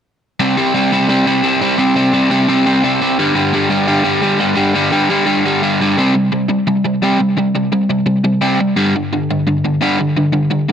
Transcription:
0.40 0.57 C3 medium
0.40 0.57 G3 medium
0.40 0.57 C4 loud
0.57 0.74 C3 medium
0.57 0.74 G3 medium
0.57 0.74 C4 medium
0.74 0.91 C3 medium
0.74 0.92 G3 medium
0.74 0.93 C4 medium
0.92 1.07 C3 medium
0.92 1.09 G3 medium
0.92 1.09 C4 medium
1.08 1.25 C3 medium
1.08 1.27 G3 medium
1.08 1.26 C4 medium
1.26 1.42 C3 medium
1.26 1.43 G3 medium
1.26 1.42 C4 medium
1.43 1.60 C3 medium
1.43 1.61 G3 medium
1.43 1.61 C4 medium
1.61 1.77 C3 medium
1.61 1.77 G3 medium
1.61 1.78 C4 medium
1.78 1.94 C3 medium
1.78 1.95 G3 medium
1.78 1.95 C4 loud
1.95 2.12 C3 medium
1.95 2.13 G3 medium
1.95 2.13 C4 medium
2.13 2.29 C3 medium
2.13 2.31 G3 medium
2.13 2.30 C4 medium
2.30 2.47 C3 medium
2.30 2.48 G3 medium
2.30 2.48 C4 medium
2.48 2.65 C3 medium
2.48 2.66 G3 medium
2.48 2.66 C4 medium
2.66 2.82 C3 medium
2.66 2.84 G3 medium
2.66 2.83 C4 medium
2.83 3.00 C3 medium
2.83 3.01 G3 medium
2.83 3.01 C4 medium
3.01 3.17 C3 medium
3.01 3.19 G3 medium
3.01 3.18 C4 medium
3.19 3.35 G2 medium
3.19 3.34 D3 medium
3.19 3.35 G3 loud
3.35 3.52 G2 medium
3.35 3.52 D3 medium
3.35 3.54 G3 medium
3.53 3.69 G2 medium
3.53 3.69 D3 medium
3.53 3.70 G3 medium
3.70 3.86 G2 medium
3.70 3.87 D3 medium
3.70 3.87 G3 medium
3.87 4.02 G2 medium
3.87 4.04 D3 medium
3.87 4.04 G3 medium
4.04 4.21 G2 medium
4.04 4.22 D3 medium
4.04 4.23 G3 medium
4.22 4.38 G2 medium
4.22 4.39 D3 medium
4.22 4.40 G3 medium
4.40 4.55 G2 medium
4.40 4.55 D3 medium
4.40 4.56 G3 medium
4.56 4.74 G2 medium
4.56 4.74 D3 medium
4.56 4.75 G3 medium
4.75 4.90 G2 medium
4.75 4.91 D3 medium
4.75 4.91 G3 medium
4.92 5.09 G2 medium
4.92 5.09 D3 medium
4.92 5.09 G3 medium
5.10 5.25 G2 medium
5.10 5.25 D3 medium
5.10 5.26 G3 medium
5.26 5.44 G2 medium
5.26 5.44 D3 medium
5.26 5.45 G3 medium
5.45 5.61 G2 medium
5.45 5.62 D3 medium
5.45 5.62 G3 medium
5.62 5.79 G2 medium
5.62 5.80 D3 medium
5.62 5.80 G3 medium
5.80 5.97 G2 medium
5.80 5.97 D3 medium
5.80 5.97 G3 medium
5.97 6.13 C3 medium
5.97 6.14 G3 medium
5.97 6.14 C4 medium
6.14 6.30 C3 medium
6.14 6.31 G3 medium
6.32 6.48 C3 medium
6.32 6.48 G3 medium
6.49 6.65 C3 medium
6.49 6.66 G3 medium
6.67 6.83 C3 medium
6.67 6.83 G3 medium
6.84 7.00 C3 medium
6.84 7.01 G3 medium
7.02 7.18 C3 medium
7.02 7.18 G3 loud
7.02 7.19 C4 loud
7.19 7.35 C3 medium
7.19 7.35 G3 medium
7.37 7.53 C3 medium
7.37 7.53 G3 medium
7.55 7.70 C3 medium
7.55 7.71 G3 medium
7.72 7.88 C3 medium
7.72 7.88 G3 medium
7.89 8.05 C3 medium
7.89 8.06 G3 medium
8.06 8.22 C3 medium
8.06 8.23 G3 medium
8.24 8.40 C3 medium
8.24 8.40 G3 medium
8.41 8.58 C3 medium
8.41 8.58 G3 medium
8.41 8.59 C4 medium
8.60 8.75 C3 medium
8.60 8.76 G3 medium
8.76 8.93 G2 medium
8.76 8.93 D3 medium
8.76 8.93 G3 loud
8.96 9.11 G2 medium
8.96 9.11 D3 medium
9.13 9.28 G2 medium
9.13 9.28 D3 medium
9.31 9.46 G2 medium
9.31 9.46 D3 medium
9.47 9.63 G2 medium
9.47 9.63 D3 medium
9.64 9.80 G2 medium
9.64 9.80 D3 medium
9.81 9.98 G2 medium
9.81 9.98 D3 loud
9.81 9.98 G3 loud
9.99 10.15 G2 medium
9.99 10.15 D3 medium
10.17 10.31 G2 medium
10.17 10.31 D3 medium
10.33 10.49 G2 medium
10.33 10.49 D3 medium
10.50 10.67 G2 medium
10.50 10.67 D3 medium
10.69 10.72 G2 medium

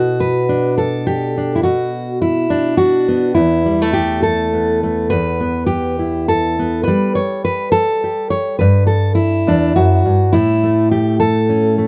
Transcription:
0.00 1.61 B2 medium
0.00 0.78 F#4 medium
0.20 0.77 B4 medium
0.49 1.35 D4 soft
0.78 1.55 A4 medium
1.07 1.57 G4 medium
1.37 1.62 D4 soft
1.55 1.63 E4 medium
1.63 3.32 B2 medium
1.63 2.21 F#4 medium
2.22 2.77 E4 medium
2.50 3.36 D4 medium
2.77 3.34 F#4 medium
3.08 3.65 B3 soft
3.35 5.10 E2 medium
3.35 3.93 E4 medium
3.66 3.82 G3 soft
3.82 4.82 A3 soft
3.93 4.22 G4 medium
4.23 5.09 A4 medium
4.53 5.40 B3 soft
4.83 5.13 A3 soft
5.10 6.87 E2 medium
5.10 5.66 B4 medium
5.40 6.59 B3 soft
5.66 6.26 G4 loud
5.99 6.83 E4 soft
6.28 6.83 A4 medium
6.59 7.18 B3 soft
6.84 7.14 B4 loud
6.88 8.57 G3 medium
7.15 7.44 C#5 medium
7.45 7.71 B4 medium
7.72 8.30 A4 loud
8.04 8.57 G4 soft
8.30 8.58 C#5 medium
8.59 9.46 G2 medium
8.59 8.86 B4 medium
8.87 9.14 A4 medium
9.15 10.02 E4 medium
9.47 9.75 E2 medium
9.47 9.75 D4 medium
9.76 10.04 F#2 medium
9.76 10.33 F#4 medium
10.06 10.33 G2 medium
10.33 11.87 A2 medium
10.33 10.90 E4 medium
10.63 11.77 A3 soft
10.91 11.19 G4 loud
11.20 11.87 A4 medium
11.49 11.87 C#4 soft
11.78 11.87 A3 soft

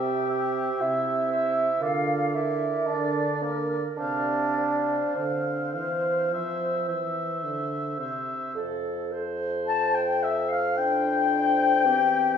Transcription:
0.00 0.70 C3 medium
0.00 0.82 G4 medium
0.00 0.29 C5 medium
0.00 0.29 E5 medium
0.00 0.83 G5 medium
0.30 1.29 C5 soft
0.30 1.29 E5 medium
0.81 1.70 C3 medium
0.81 1.83 E4 medium
0.81 1.82 E5 medium
1.30 1.80 C5 medium
1.30 1.82 E5 medium
1.80 2.74 D3 medium
1.80 2.36 F4 medium
1.80 2.32 A#4 soft
1.80 2.34 D5 soft
1.80 2.37 F5 medium
2.33 2.89 E4 medium
2.33 3.25 A#4 soft
2.33 3.41 D5 soft
2.33 2.91 E5 medium
2.87 3.85 D3 medium
2.87 3.43 D4 medium
2.87 3.45 D5 medium
3.42 3.79 A#3 medium
3.42 3.98 A#4 soft
3.42 3.80 A#4 medium
3.42 3.83 D5 soft
3.97 5.02 C3 medium
3.97 5.16 D4 medium
3.97 4.56 C5 soft
3.97 5.19 D5 medium
3.97 4.56 F5 soft
4.57 5.72 C5 soft
4.57 5.72 F5 soft
5.15 5.75 D3 medium
5.15 7.43 C4 medium
5.15 7.44 C5 soft
5.73 6.33 E3 medium
5.73 6.31 C5 soft
5.73 6.30 F5 soft
6.32 6.89 F3 medium
6.32 6.87 C5 soft
6.32 6.88 E5 soft
6.88 7.45 E3 medium
6.88 7.97 C5 soft
6.88 7.98 E5 soft
7.43 8.00 D3 medium
7.98 8.56 C3 soft
7.98 8.55 C5 soft
7.98 8.55 E5 soft
8.54 11.86 F2 medium
8.54 9.13 A4 medium
9.12 10.59 C5 medium
9.67 9.96 A5 medium
9.94 10.24 G5 medium
9.94 10.25 G5 medium
10.23 10.50 E5 medium
10.49 10.78 F5 medium
10.49 10.79 F5 medium
10.76 11.87 D4 medium
10.76 11.86 C5 medium
10.76 12.38 G5 medium
11.85 12.38 E2 medium
11.85 12.38 C4 medium
11.85 12.38 G4 medium

